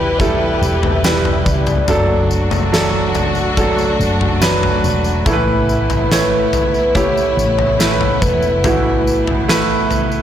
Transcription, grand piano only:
0.00 1.90 B2 medium
0.00 0.20 G3 medium
0.00 0.21 E4 medium
0.00 0.16 G4 medium
0.00 1.05 B4 medium
0.20 1.00 G3 medium
0.20 1.00 E4 medium
0.20 1.01 A4 medium
1.04 1.84 G3 medium
1.04 1.84 E4 medium
1.04 1.85 B4 medium
1.88 2.69 F#3 medium
1.88 2.69 D4 medium
1.88 2.69 A4 medium
2.72 3.53 F#3 medium
2.72 3.53 D4 medium
2.72 3.53 A4 medium
3.57 4.37 F#3 medium
3.57 4.38 D4 medium
3.57 4.38 A4 medium
4.41 5.22 F#3 medium
4.41 5.22 D4 medium
4.41 5.22 B4 loud
5.25 6.49 A2 medium
5.25 6.49 E3 medium
5.25 6.06 A3 medium
5.25 6.07 E4 medium
5.25 5.33 A4 medium
5.33 6.10 B4 medium
6.11 6.91 A3 medium
6.11 6.91 E4 medium
6.11 6.92 C#5 medium
6.95 7.76 A3 medium
6.95 7.76 E4 medium
6.95 7.76 G4 medium
7.79 8.60 A3 medium
7.79 8.60 E4 medium
7.79 8.60 B4 medium
8.64 9.87 A2 medium
8.64 9.87 E3 medium
8.64 9.45 A3 medium
8.64 9.45 E4 medium
8.64 9.45 F#4 medium
9.48 10.22 A3 medium
9.48 10.22 E4 medium
9.48 10.22 B4 loud

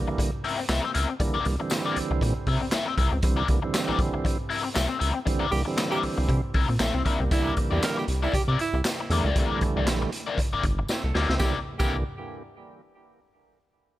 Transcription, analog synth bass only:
0.69 0.80 C2 loud
0.95 1.06 C#2 medium
1.46 1.57 C2 loud
1.96 2.02 C2 soft
2.10 2.19 C2 medium
2.22 2.33 A#2 loud
2.47 2.58 C3 loud
2.98 3.09 C2 medium
3.12 3.21 C#2 medium
3.23 3.43 C2 loud
3.49 3.60 C2 loud
3.88 3.93 A#1 medium
3.99 4.10 A#1 medium
4.76 4.87 C2 medium
5.01 5.12 C#2 loud
5.52 5.63 C2 medium
6.03 6.09 C2 soft
6.18 6.27 C2 loud
6.29 6.40 C3 medium
6.55 6.66 C2 loud
6.69 6.78 A#2 medium
6.80 6.91 A#1 loud
6.94 7.03 C2 medium
7.19 7.28 C2 medium
7.31 7.51 C2 loud
7.71 7.80 E2 medium
8.08 8.28 C2 medium
8.34 8.39 C3 soft
8.48 8.56 C3 medium
8.73 8.82 C2 medium
9.10 9.21 E2 loud
9.24 9.33 C#2 medium
9.36 9.47 C2 loud
9.75 9.88 C2 medium
9.87 10.06 A#1 medium
10.52 10.57 G1 soft
10.64 10.83 G1 loud
11.04 11.12 C2 medium
11.15 11.26 D2 loud
11.29 11.38 C#2 loud
11.40 11.55 C2 medium
11.80 12.04 C2 loud

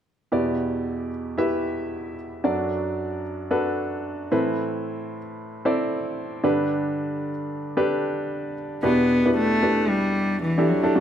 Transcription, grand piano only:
0.32 2.41 E2 medium
0.32 2.41 B2 soft
0.32 1.08 E4 medium
0.32 1.08 G4 medium
0.32 1.09 B4 medium
0.32 1.09 D5 medium
1.38 2.14 E4 medium
1.38 2.15 G4 medium
1.38 2.15 B4 medium
1.38 2.15 E5 medium
2.44 4.27 F#2 medium
2.44 4.27 F#3 medium
2.44 3.21 D4 medium
2.44 3.21 F#4 medium
2.44 3.21 A4 medium
2.44 3.21 D5 medium
3.51 4.28 D4 medium
3.51 4.28 F#4 medium
3.51 4.28 A4 medium
3.51 4.28 B4 medium
4.32 6.41 A2 soft
4.32 6.40 E3 soft
4.32 5.17 C4 medium
4.32 5.17 E4 medium
4.32 5.17 A4 medium
4.32 5.18 B4 medium
5.65 6.41 C4 medium
5.65 6.41 E4 medium
5.65 6.42 A4 medium
5.65 6.42 D5 medium
6.44 8.53 G2 soft
6.44 8.53 D3 medium
6.44 7.30 D4 medium
6.44 7.30 G4 medium
6.44 7.30 A4 medium
6.44 7.30 B4 medium
7.77 8.53 D4 medium
7.77 8.54 G4 medium
7.77 8.53 A4 medium
7.77 8.54 B4 medium
8.83 10.92 E2 soft
8.83 10.92 B2 soft
8.83 9.12 D4 medium
8.83 9.12 E4 medium
8.83 9.12 G4 medium
8.83 9.12 B4 medium
9.25 9.53 D4 medium
9.25 9.53 E4 medium
9.25 9.53 G4 medium
9.25 9.54 B4 medium
9.62 10.31 D4 medium
9.62 10.31 E4 medium
9.62 10.31 G4 medium
9.62 10.31 B4 medium
10.58 10.76 D4 medium
10.58 10.76 E4 medium
10.58 10.76 G4 medium
10.58 10.76 A4 medium
10.83 10.92 D4 medium
10.83 10.92 E4 medium
10.83 10.92 G4 medium
10.83 10.93 A4 medium
10.95 11.00 F#2 medium
10.95 11.00 F#3 soft
10.95 11.00 A3 medium
10.95 11.00 D4 medium
10.95 11.00 F#4 medium
10.95 11.00 A4 medium

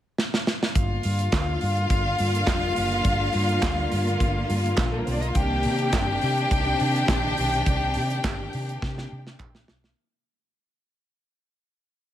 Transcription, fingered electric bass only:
0.76 0.98 G1 loud
1.05 1.27 G2 loud
1.33 1.55 D2 loud
1.62 1.85 G2 medium
1.91 2.13 G1 loud
2.20 2.42 G2 medium
2.47 2.70 F1 medium
2.77 3.00 F#1 medium
3.05 3.28 G1 loud
3.35 3.57 G2 medium
3.63 3.85 D2 medium
3.92 4.15 G2 medium
4.21 4.43 G1 medium
4.50 4.72 G2 loud
4.78 5.01 A#1 medium
5.07 5.30 B1 medium
5.36 5.67 C2 loud
5.65 5.95 C3 medium
5.93 6.16 G1 medium
6.23 6.45 C3 medium
6.51 6.74 C2 loud
6.81 7.03 C3 loud
7.09 7.32 A#1 medium
7.38 7.61 B1 medium
7.67 7.97 C2 loud
7.96 8.19 C3 medium
8.24 8.47 G1 medium
8.54 8.77 C3 medium
8.83 9.05 C3 loud
9.12 9.34 C3 loud
9.40 9.63 A#1 medium
9.69 9.92 B1 medium

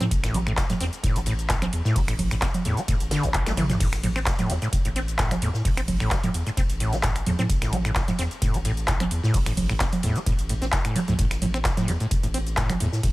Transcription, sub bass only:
0.00 0.08 A2 loud
0.11 0.64 A1 loud
0.80 0.89 E2 medium
1.03 1.13 E1 loud
1.16 1.68 A1 medium
1.73 1.82 E2 loud
1.85 1.93 A2 loud
1.96 2.49 A1 loud
2.65 2.74 E2 medium
2.88 2.97 E1 loud
3.01 3.11 A1 medium
3.11 3.20 G1 medium
3.23 3.76 A1 medium
3.80 4.34 A1 loud
4.50 4.59 E2 medium
4.73 4.82 E1 loud
4.85 5.37 A1 medium
5.42 5.51 E2 loud
5.54 5.62 A2 loud
5.65 6.18 A1 loud
6.34 6.43 E2 medium
6.57 6.66 E1 loud
6.69 7.22 A1 medium
7.26 7.36 E2 loud
7.39 7.47 A2 loud
7.49 8.03 A1 loud
8.19 8.28 E2 medium
8.42 8.51 E1 loud
8.54 9.07 A1 medium
9.11 9.20 E2 loud
9.23 9.31 A2 loud
9.34 9.87 A1 loud
10.03 10.12 E2 medium
10.26 10.36 E1 loud
10.39 10.61 A1 medium
10.62 10.70 A1 loud
11.08 11.16 D2 medium
11.19 11.72 A1 loud
11.88 11.97 E2 medium
12.11 12.20 E1 loud
12.23 12.76 A1 medium
12.80 12.89 E2 loud
12.93 13.01 A2 loud
13.03 13.12 A1 loud

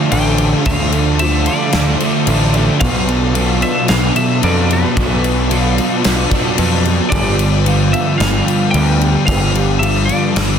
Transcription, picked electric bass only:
0.12 0.53 A1 loud
0.66 1.48 D2 loud
1.74 1.94 D2 medium
2.27 2.68 A1 medium
2.81 3.63 B1 loud
3.90 4.10 B1 medium
4.43 4.84 F2 loud
4.97 5.78 B1 loud
6.05 6.25 B1 medium
6.59 6.99 F2 medium
7.12 7.94 G1 loud
8.20 8.41 G1 medium
8.74 9.15 D2 medium
9.28 10.10 G1 loud
10.37 10.57 G1 medium

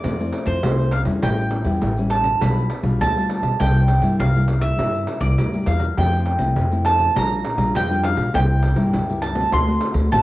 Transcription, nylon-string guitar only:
0.03 0.60 F3 medium
0.03 0.13 A3 medium
0.03 0.13 C4 soft
0.03 0.13 E4 medium
0.20 0.59 A3 medium
0.20 0.59 C4 medium
0.20 0.59 E4 medium
0.64 1.20 C3 medium
0.64 0.91 A3 medium
0.64 0.92 C4 soft
0.64 0.92 E4 medium
1.06 1.61 G3 medium
1.06 1.62 C#4 medium
1.06 1.62 E4 medium
1.24 1.80 A2 medium
1.66 1.91 G3 medium
1.66 1.91 C#4 medium
1.66 1.92 E4 medium
1.83 2.39 E3 medium
1.98 2.37 G3 medium
1.98 2.38 C#4 medium
1.98 2.38 E4 medium
2.42 2.98 B2 medium
2.42 2.69 G3 medium
2.42 2.70 D4 medium
2.42 2.70 F4 medium
2.83 3.09 G3 medium
2.83 3.10 D4 medium
2.83 3.10 F4 medium
3.01 3.57 B2 medium
3.16 3.56 G3 medium
3.16 3.56 D4 medium
3.16 3.56 F4 medium
3.61 4.17 C3 medium
3.61 3.88 G3 medium
3.61 3.88 A#3 medium
3.61 3.88 E4 medium
4.02 4.28 G3 medium
4.02 4.29 A#3 medium
4.02 4.29 E4 medium
4.20 4.76 G2 soft
4.36 4.75 G3 medium
4.36 4.75 A#3 medium
4.36 4.75 E4 medium
4.79 5.35 C3 medium
4.79 5.19 G3 soft
4.79 5.19 A#3 soft
4.79 5.19 E4 medium
5.21 5.47 G3 soft
5.21 5.47 A#3 medium
5.21 5.47 E4 medium
5.38 5.94 G2 medium
5.54 5.93 G3 medium
5.54 5.93 A#3 medium
5.54 5.93 E4 medium
5.97 6.54 F3 medium
5.97 6.37 A3 medium
5.97 6.37 C4 medium
5.97 6.37 E4 medium
6.39 6.65 A3 medium
6.39 6.65 C4 medium
6.39 6.65 E4 medium
6.56 7.13 C3 medium
6.72 7.11 A3 medium
6.72 7.11 C4 medium
6.72 7.12 E4 medium
7.15 7.72 A#2 medium
7.15 7.43 G3 soft
7.15 7.43 D4 soft
7.15 7.44 F4 medium
7.57 7.83 G3 medium
7.57 7.83 D4 medium
7.57 7.84 F4 medium
7.74 8.31 F3 medium
7.90 8.29 G3 medium
7.90 8.29 D4 medium
7.90 8.30 F4 medium
8.33 8.90 C3 medium
8.33 8.74 G3 medium
8.33 8.74 A#3 medium
8.33 8.74 E4 medium
8.75 9.02 G3 medium
8.75 9.02 A#3 medium
8.75 9.02 E4 medium
8.93 9.49 G2 medium
9.09 9.33 G3 medium
9.09 9.34 A#3 medium
9.09 9.34 E4 medium
9.35 9.61 A3 medium
9.35 9.62 C4 medium
9.35 9.62 F#4 medium
9.52 10.09 D3 medium
9.68 10.07 A3 medium
9.68 10.07 C4 medium
9.68 10.08 F#4 medium
10.11 10.22 A2 medium
10.11 10.22 A3 medium
10.11 10.22 C4 medium
10.11 10.22 F#4 medium

